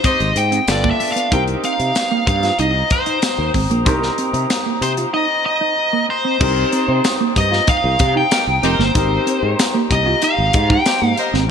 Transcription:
Already playing: A#3 C4 D#4 G4
0.04 C4 D#4 G4 C5 D#5, kick, closed hi-hat
0.20 G#1, closed hi-hat
0.35 G#2 G5, muted clean electric guitar stroke, closed hi-hat
0.51 C4, closed hi-hat
0.67 G1 B3 D4 F4 A4 D5, snare, closed hi-hat, tambourine
0.83 A#3, kick
0.90 E5
1.00 muted clean electric guitar stroke, open hi-hat
1.12 B3 F5
1.16 closed hi-hat
1.31 C2 C4 D#4 G4 A#4 C5 G5 A#5 D#6, kick, closed hi-hat
1.48 closed hi-hat
1.63 C4 F5, closed hi-hat
1.79 C3, muted clean electric guitar stroke, closed hi-hat
1.95 snare, closed hi-hat, tambourine
2.11 A#3
2.27 G2 F5, muted clean electric guitar stroke, kick, closed hi-hat
2.43 F4, snare, closed hi-hat
2.59 C2 D#4 D#5, closed hi-hat
2.90 C5, muted clean electric guitar stroke, kick, closed hi-hat
3.06 D#4, closed hi-hat
3.22 muted clean electric guitar stroke, snare, closed hi-hat, tambourine
3.38 D#2
3.54 G#1 C4, kick, open hi-hat
3.70 A#1 A#3, closed hi-hat
3.85 C2 C4 D#4 G4 A#4, kick, closed hi-hat
4.03 snare
4.18 C4, closed hi-hat
4.33 C3, muted clean electric guitar stroke, closed hi-hat
4.50 snare, closed hi-hat, tambourine
4.66 A#3
4.81 C3 C5, muted clean electric guitar stroke, closed hi-hat
4.97 F4, closed hi-hat
5.13 D#4 D#5
5.45 D#5, muted clean electric guitar stroke
5.61 D#4
5.93 A#3
6.09 C5, muted clean electric guitar stroke
6.25 C4
6.40 C2 C4 D#4 G4 A#4 C5 G5 A#5 D#6, kick, crash
6.72 C4, closed hi-hat
6.88 C3, muted clean electric guitar stroke
7.04 snare, closed hi-hat, tambourine
7.20 A#3
7.36 G2 D#5, muted clean electric guitar stroke, kick, closed hi-hat
7.51 F4, snare
7.67 D#4 F5, kick, closed hi-hat
7.84 C2
7.99 C3, muted clean electric guitar stroke, kick, closed hi-hat
8.15 D#4 G5
8.31 D#4 G4 A#4, muted clean electric guitar stroke, snare, closed hi-hat, tambourine
8.47 C2
8.63 F1 C4 D#4 G4 A#4 C5, closed hi-hat
8.79 G1 A#3, snare
8.94 G#1 C4 D#4 G4 A#4, kick, closed hi-hat
9.26 C4, closed hi-hat
9.43 G#2, muted clean electric guitar stroke
9.59 snare, closed hi-hat, tambourine
9.74 A#3
9.90 C2 D#5, muted clean electric guitar stroke, kick, closed hi-hat
10.06 F4
10.22 D#4 F5, closed hi-hat
10.38 G#1
10.53 G#2, muted clean electric guitar stroke, kick, closed hi-hat
10.70 D#4 G5, kick
10.86 D#4 G4 C5, snare, closed hi-hat, tambourine
11.02 G#2 A#3
11.17 A#4 C5 D#5, muted clean electric guitar stroke, closed hi-hat
11.33 G#1 C4, snare

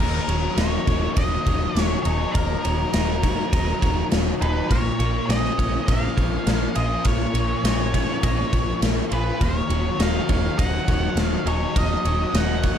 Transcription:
Already playing: A#4
0.00 D#1 D#2 A#4
0.28 D#1 F#3 C#5, ride
0.54 D#1 A#3 D#4 C#5, ride
0.58 D#5, snare
0.86 D#1 D#3 A#3 C#5, kick, ride
1.14 D#1 F#3 D#5, kick, ride
1.45 D#1 D#3 C#5, kick, ride
1.75 D#1 F#3, snare, ride
1.80 C#5
2.03 D#1 D#4 G#4 C#5, ride
2.32 D#1 D#2 A#4, kick, ride
2.65 D#1 F#3 C#5, ride
2.93 D#1 A#3 D#4 D#5, snare, ride
3.23 D#3 A#3 C#5, kick, ride
3.52 D#1 F#3 D#5, kick, ride
3.82 D#1 D#3 C#5, kick, ride
4.10 D#1 F#3, snare, ride
4.41 D#1 D#4 G#4 B4, ride
4.69 A#1 A#2 A#4 C#5, kick, ride
4.99 A#1 A#3 C#5, ride
5.27 A#1 C#4 F4 D#5, snare, ride
5.45 snare
5.58 A#1 F3 C#4 C#5, kick, ride
5.86 A#1 A#3 D#5 F5, kick, ride
6.17 A#1 F3 C#5, kick, ride
6.47 A#1 A#3, snare, ride
6.75 A#1 F4 G#4 D#5, ride
7.04 A#1 A#2 A#4 C#5, kick, ride
7.33 A#1 A#3 C#5, ride
7.63 A#1 C#4 F4 D#5, snare, ride
7.92 F3 C#4 C#5, kick, ride
8.21 A#1 A#3 D#5, kick, ride
8.49 A#1 F3 C#5, kick, ride
8.81 A#1 A#3, snare, ride
9.11 A#1 F4 G#4 B4, ride
9.40 D#1 D#2 A#4 C#5, kick, ride
9.69 D#1 F#3 C#5, ride
9.99 D#1 A#3 D#4 D#5 F5, snare, ride
10.28 D#1 D#3 A#3 C#5, kick, ride
10.59 D#1 F#3 D#5 F#5, kick, ride
10.88 D#1 D#3 C#5, kick, ride
11.15 D#1 F#3, snare, ride
11.21 F5
11.45 D#1 D#4 G#4 C#5, ride
11.76 D#1 D#2 A#4 D#5, kick, ride
12.05 D#1 F#3 C#5, ride
12.34 D#1 A#3 D#4 D#5 F#5, snare, ride
12.63 D#3 A#3 C#5, kick, ride

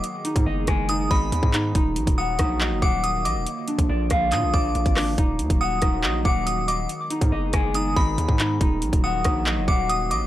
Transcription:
Already playing: D#3
0.04 G#3 B3 G#4, closed hi-hat
0.25 D#4, closed hi-hat
0.36 G#2, kick, closed hi-hat
0.46 F#1 D#5
0.67 F#1 G#5, kick, cross-stick, closed hi-hat
0.89 D#4 D#6, closed hi-hat
1.11 G#1 D#5 B5, kick
1.32 D#2, closed hi-hat
1.43 G#2, kick
1.54 D#4, clap, closed hi-hat
1.75 D#1 D#3 F#3 A#3 D#4 F#4, kick, closed hi-hat
1.96 A#1, closed hi-hat
2.07 D#1, kick, closed hi-hat
2.18 F#5 D#6
2.39 A#1 D#4, kick, cross-stick, closed hi-hat
2.61 D#5, clap
2.72 F#1
2.82 D#1 F#5 D6, kick
3.04 D#6, closed hi-hat
3.25 A#1 D#5 D6, closed hi-hat
3.36 D#1
3.46 D3 F3 F4, closed hi-hat
3.68 D4, closed hi-hat
3.79 A#1, kick, closed hi-hat
3.89 A#1 D5
4.10 A#1 F5, kick, cross-stick, closed hi-hat
4.32 A#2 D4 D#6, clap, closed hi-hat
4.43 A#1
4.54 A#1 D5 D6, kick
4.75 A#1, closed hi-hat
4.86 G#1, kick, closed hi-hat
4.97 D4, cross-stick, clap, open hi-hat
5.18 D#1 D#3 F#3 D#4 F#4, kick, closed hi-hat
5.39 D#2, closed hi-hat
5.50 D#1, kick, closed hi-hat
5.61 F#5 D#6
5.82 D#1 D#4, kick, cross-stick, closed hi-hat
6.04 A#1 D#5, clap
6.25 D#1 F#5 D6, kick
6.47 D#6, closed hi-hat
6.68 D#5 D6, closed hi-hat
6.89 G#3 B3 G#4, closed hi-hat
7.10 D#4, closed hi-hat
7.21 G#2, kick, closed hi-hat
7.32 F#1 D#5
7.53 F#1 G#5, kick, cross-stick, closed hi-hat
7.74 D#4 D#6, closed hi-hat
7.96 G#1 D#5 B5, kick
8.18 D#2, closed hi-hat
8.29 G#2, kick
8.39 D#4, clap, closed hi-hat
8.61 D#1 F#3 A#3 D#4 F#4, kick, closed hi-hat
8.82 A#1, closed hi-hat
8.93 D#1, kick, closed hi-hat
9.04 F#5 D#6
9.24 A#1 D#4, kick, cross-stick, closed hi-hat
9.46 D#5, clap
9.57 F#1
9.68 D#1 F#5 D6, kick
9.89 D#6, closed hi-hat
10.11 A#1 D#5 D6, closed hi-hat
10.22 D#1

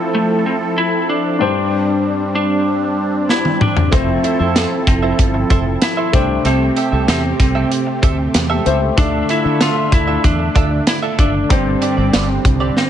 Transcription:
Already playing: F3 A3 C4 E4 A4 C5
0.15 A3
0.46 C4
0.78 E4
1.09 D4
1.39 G2 G3 D4 G4 C5
2.35 D4
3.29 E4, snare
3.45 high tom
3.61 D4, mid tom
3.77 floor tom
3.91 F1 F3 A3 C4 E4 A4 C5 E5, kick, closed hi-hat
4.24 E4 A4 C5 E5, closed hi-hat
4.39 F2 E4 A4 C5 E5
4.55 E4 A4 C5 E5, snare, closed hi-hat, tambourine
4.71 muted clean electric guitar stroke
4.87 F1 C4, muted clean electric guitar stroke, kick, closed hi-hat
5.03 E4 A4 C5 E5
5.19 G1, kick, closed hi-hat
5.34 muted clean electric guitar stroke
5.50 F1 E4 A4 C5 E5, kick, closed hi-hat
5.66 muted clean electric guitar stroke
5.82 E4, muted clean electric guitar stroke, snare, closed hi-hat, tambourine
5.97 E4 A4 C5 E5
6.12 C2 C3 A3 C4 D4 E4 G4 A4 C5 E5, kick, closed hi-hat
6.29 muted clean electric guitar stroke
6.45 C2 C4 G4 A4 E5, closed hi-hat
6.76 C4 G4 A4 E5, closed hi-hat
6.92 C2 C4 G4 A4 E5
7.08 E2 C4 G4 A4 E5, snare, closed hi-hat, tambourine
7.24 muted clean electric guitar stroke
7.39 C2 C4, muted clean electric guitar stroke, kick, closed hi-hat
7.55 C4 G4 A4 E5
7.71 muted clean electric guitar stroke, closed hi-hat
7.87 muted clean electric guitar stroke
8.02 D2 C4 G4 A4 E5, kick, closed hi-hat
8.18 muted clean electric guitar stroke
8.34 E2, muted clean electric guitar stroke, snare, closed hi-hat, tambourine
8.50 C4 G4 A4 E5
8.65 C#2 A3 C4 E4 G4 A4 C5 E5, closed hi-hat
8.81 muted clean electric guitar stroke
8.96 D2 D3 A3 D4 F4 A4 D5 E5, kick, closed hi-hat
9.29 D4 E4 F4 A4 E5, closed hi-hat
9.45 D3 D4 F4 A4 E5
9.60 D4 F4 A4 E5, snare, closed hi-hat, tambourine
9.76 muted clean electric guitar stroke
9.92 D2 E4, muted clean electric guitar stroke, kick, closed hi-hat
10.08 D4 F4 A4 E5
10.24 E2 D4, kick, closed hi-hat
10.39 muted clean electric guitar stroke
10.55 D2 D4 F4 A4 E5, kick, closed hi-hat
10.71 muted clean electric guitar stroke
10.87 E4, muted clean electric guitar stroke, snare, closed hi-hat, tambourine
11.02 D4 F4 A4 E5
11.18 F#1 D4 F4 A4 E5, kick, closed hi-hat
11.34 muted clean electric guitar stroke
11.49 G1 G2 G3 C4 D4 G4 C5 D5, kick, closed hi-hat
11.81 C4 D4 G4 D5, closed hi-hat
11.97 G1 C4 D4 G4 D5
12.13 G1 C4 D4 G4 D5, snare, closed hi-hat, tambourine
12.29 muted clean electric guitar stroke
12.45 C2, muted clean electric guitar stroke, kick, closed hi-hat
12.60 C4 D4 G4 D5
12.77 C4, snare

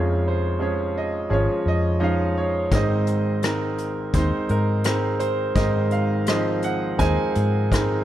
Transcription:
Already playing: F1 F2 F3 G#3 C#4 F4 G#4 C#5
0.28 C5
0.59 F3 G#3 C#4 G#4 C#5
0.98 D#5
1.30 G#1 F3 G#3 C#4 G#4 C#5
1.34 F4 G#4
1.66 F2 D#5
2.00 F3 G#3 C#4 D#4 F5
2.38 C#5
2.71 G#1 G#2 G#3 C4 D#4 A#4 D#5, kick, closed hi-hat
2.76 A#4 C5
3.07 closed hi-hat
3.42 G#3 C4 D#4 A#4, cross-stick, closed hi-hat
3.78 closed hi-hat
4.13 D#2 G#3 C4 D#4 C5, kick, closed hi-hat
4.19 D#4
4.49 G#2 A#4, closed hi-hat
4.84 G#3 C4 D#4 A#4, cross-stick, closed hi-hat
5.20 C5, closed hi-hat
5.55 G#1 G#2 G#3 C4 D#4 A#4 C5 D#5, kick, closed hi-hat
5.91 F5, closed hi-hat
6.26 F3 G#3 C4 D#4 D#5, cross-stick, closed hi-hat
6.62 F#5, closed hi-hat
6.98 D#2 G#3 C4 D#4 A#4 C5 D#5 G#5, kick, closed hi-hat
7.35 G#2, closed hi-hat
7.71 G#3 C4 D#4 A#4, kick, cross-stick, closed hi-hat

